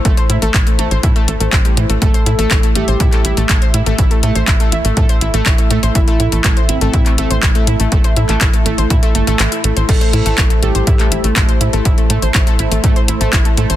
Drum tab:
CC |----------------|----------------|----------------|----------------|
HH |xxxxxxxxxxxxxxxx|xxxxxxxxxxxxxxxx|xxxxxxxxxxxxxxxx|xxxxxxxxxxxxxxxx|
CP |----x-------x---|----x----x--x---|----x-------x---|----x----x--x---|
BD |o---o---o---o---|o---o---o---o---|o---o---o---o---|o---o---o---o---|

CC |----------------|x---------------|----------------|
HH |xxxxxxxxxxxxxxxx|xxxxxxxxxxxxxxxx|xxxxxxxxxxxxxxxx|
CP |---xx-------x---|----x----x--x---|----x-------x---|
BD |o---o---o-------|o---o---o---o---|o---o---o---o---|